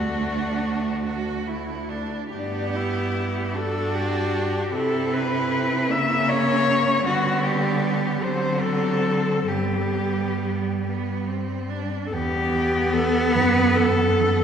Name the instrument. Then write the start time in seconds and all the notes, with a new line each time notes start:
cello
Already playing: D2 A3 D4 F#4
1.05 F#4
1.47 E4
1.90 D4
2.32 G2 B3 D4 G4
2.76 E4
3.54 D4 F#4 A4
3.95 G4
4.72 C3 C4 E4 A4
5.13 B4
5.89 C#3 A#3 C#4 E5
6.29 C#5
7.04 D3 G3 B3 F#4
7.43 G4
8.20 D3 F#3 C4 C5
8.61 A4
9.48 G2 G3 B3 G4
10.84 B3
11.27 C4
11.69 D4
12.06 A4
12.11 E2 E3 B3 G4
12.52 E3
12.92 E3 A4
13.32 F#2 D#3 B4
13.75 D#3 A4
14.17 D#3